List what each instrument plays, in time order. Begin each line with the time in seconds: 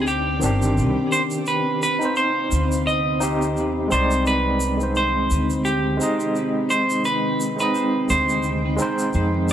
Already playing: upright bass D2, tine electric piano C4 D4 D#4 G4, string machine C4 G5 D6, synth texture C4
0.02 clean electric guitar G#4
0.07 clean electric guitar G4, shaker
0.39 upright bass G1, tine electric piano D#3 C4, shaker
0.43 tine electric piano D4 G4
0.62 shaker
0.78 upright bass C2, shaker
1.12 clean electric guitar C5, shaker
1.31 shaker
1.46 clean electric guitar B4, string machine F5, shaker
1.83 clean electric guitar B4, shaker
1.99 tine electric piano C4 D#4, shaker
2.05 tine electric piano C5
2.16 clean electric guitar C5, shaker
2.52 upright bass D2, shaker
2.72 shaker
2.87 clean electric guitar D#5, shaker
3.20 tine electric piano C4 D#4 G4, shaker
3.42 shaker
3.57 upright bass D#2, shaker
3.88 upright bass C2, tine electric piano G#3 C4 D#4, shaker
3.92 clean electric guitar C5, tine electric piano D5
4.11 shaker
4.26 string machine C4 D#4, clean electric guitar B4, shaker
4.60 shaker
4.77 tine electric piano G#3 C4 D#4, shaker
4.83 tine electric piano C5
4.96 clean electric guitar C5, shaker
5.31 upright bass D2, shaker
5.50 shaker
5.65 clean electric guitar G4, shaker
5.97 tine electric piano G#3 C4, shaker
6.01 tine electric piano D#4 D#5
6.20 shaker
6.35 shaker
6.70 clean electric guitar C5, shaker
6.90 shaker
7.04 clean electric guitar B4, string machine G5, shaker
7.41 shaker
7.57 tine electric piano G#3 C4, clean electric guitar B4, shaker
7.61 tine electric piano D#4 D#5
7.75 shaker
8.09 upright bass D2, clean electric guitar C5, shaker
8.29 shaker
8.43 shaker
8.76 tine electric piano G#3 C4, shaker
8.80 tine electric piano D#4 C5
8.99 shaker
9.13 upright bass F2, shaker
9.49 shaker